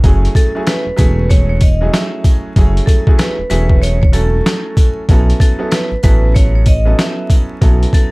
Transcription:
0.03 analog synth bass F#1, upright piano F#3 A3 C#4 E4 G#4, kick, closed hi-hat, sleigh bells
0.25 closed hi-hat
0.35 vibraphone A4, kick, closed hi-hat, sleigh bells
0.55 upright piano F#3 A3 C#4 E4 G#4
0.66 vibraphone B4, snare, closed hi-hat, sleigh bells
0.86 analog synth bass E1
0.96 analog synth bass E1, upright piano F#3 A3 C#4 E4 G#4, vibraphone B4, kick, closed hi-hat, sleigh bells
1.30 vibraphone C#5, kick, closed hi-hat, sleigh bells
1.49 vibraphone C#5
1.61 vibraphone D#5, kick, closed hi-hat, sleigh bells
1.81 upright piano F#3 A3 C#4 E4 G#4
1.93 vibraphone E5, snare, closed hi-hat, sleigh bells
2.24 kick, closed hi-hat, sleigh bells
2.56 analog synth bass F#1, upright piano F#3 A3 C#4 E4 G#4, kick, closed hi-hat, sleigh bells
2.77 closed hi-hat
2.86 vibraphone A4, kick, closed hi-hat, sleigh bells
3.07 upright piano F#3 A3 C#4 E4 G#4, kick
3.18 vibraphone B4, snare, closed hi-hat, sleigh bells
3.39 analog synth bass E1
3.50 analog synth bass E1, upright piano F#3 A3 C#4 E4 G#4, vibraphone B4, closed hi-hat, sleigh bells
3.69 kick
3.82 vibraphone C#5, closed hi-hat, sleigh bells
4.02 vibraphone C#5, kick
4.12 upright piano F#3 A3 C#4 E4 A4, vibraphone A4, closed hi-hat, sleigh bells
4.46 snare, closed hi-hat, sleigh bells
4.77 kick, closed hi-hat, sleigh bells
5.09 analog synth bass B1, upright piano F#3 B3 C#4 E4 A4, kick, closed hi-hat, sleigh bells
5.30 closed hi-hat
5.40 vibraphone A4, kick, closed hi-hat, sleigh bells
5.59 upright piano F#3 B3 C#4 E4 A4
5.71 vibraphone B4, snare, closed hi-hat, sleigh bells
5.91 analog synth bass A1
6.03 analog synth bass A1, upright piano F#3 B3 C#4 E4 A4, vibraphone B4, kick, closed hi-hat, sleigh bells
6.35 vibraphone C#5, kick, closed hi-hat, sleigh bells
6.55 vibraphone C#5
6.66 vibraphone D#5, kick, closed hi-hat, sleigh bells
6.85 upright piano F#3 B3 C#4 E4 A4
6.99 vibraphone E5, snare, closed hi-hat, sleigh bells
7.30 kick, closed hi-hat, sleigh bells
7.61 analog synth bass B1, upright piano F#3 B3 C#4 E4 A4, kick, closed hi-hat, sleigh bells
7.83 closed hi-hat
7.93 vibraphone A4, kick, closed hi-hat, sleigh bells

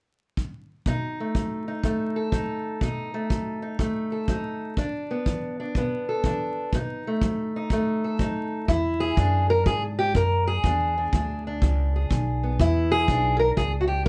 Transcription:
0.37 kick
0.86 steel-string acoustic guitar B2 D#4, kick
1.20 steel-string acoustic guitar A3
1.35 steel-string acoustic guitar F#3, kick
1.68 steel-string acoustic guitar D#4
1.83 steel-string acoustic guitar F#2 A3, kick
2.16 steel-string acoustic guitar A4
2.32 steel-string acoustic guitar F#3 D#4, kick
2.81 steel-string acoustic guitar B2 D#4, kick
3.14 steel-string acoustic guitar A3
3.30 steel-string acoustic guitar F#3, kick
3.62 steel-string acoustic guitar D#4
3.79 steel-string acoustic guitar F#2 A3, kick
4.12 steel-string acoustic guitar A4
4.28 steel-string acoustic guitar F#3 D#4, kick
4.77 steel-string acoustic guitar E2 D4, kick
5.11 steel-string acoustic guitar B3
5.26 steel-string acoustic guitar E3, kick
5.60 steel-string acoustic guitar D4
5.75 steel-string acoustic guitar B2 B3, kick
6.09 steel-string acoustic guitar A4
6.24 steel-string acoustic guitar E3 D4, kick
6.73 steel-string acoustic guitar B2 D#4, kick
7.07 steel-string acoustic guitar A3
7.21 steel-string acoustic guitar F#3, kick
7.56 steel-string acoustic guitar D#4
7.70 steel-string acoustic guitar F#2 A3, kick
8.04 steel-string acoustic guitar A4
8.19 steel-string acoustic guitar F#3 D#4, kick
8.68 upright bass E2, steel-string acoustic guitar E2 E4, kick
9.00 steel-string acoustic guitar G#4
9.17 steel-string acoustic guitar E2 D4, upright bass F#2, kick
9.50 steel-string acoustic guitar A#4
9.66 steel-string acoustic guitar E2 G#4, upright bass G#2, kick
9.99 steel-string acoustic guitar G4
10.14 steel-string acoustic guitar E2 A#4, upright bass F#2, kick
10.47 steel-string acoustic guitar G#4
10.63 upright bass E2, steel-string acoustic guitar E2 D4, kick
10.98 steel-string acoustic guitar D4
11.13 upright bass D2, steel-string acoustic guitar E2 D4, kick
11.47 steel-string acoustic guitar D4
11.62 upright bass C#2, steel-string acoustic guitar E2, kick
11.96 steel-string acoustic guitar G#4
12.10 upright bass B1, steel-string acoustic guitar E2, kick
12.43 steel-string acoustic guitar B3
12.59 upright bass E2, steel-string acoustic guitar E2 E4, kick
12.92 steel-string acoustic guitar G#4
13.08 upright bass B1, steel-string acoustic guitar E2 D4, kick
13.39 steel-string acoustic guitar A#4
13.57 upright bass C#2, steel-string acoustic guitar E2 G#4, kick
13.81 steel-string acoustic guitar F#4
13.88 steel-string acoustic guitar G4

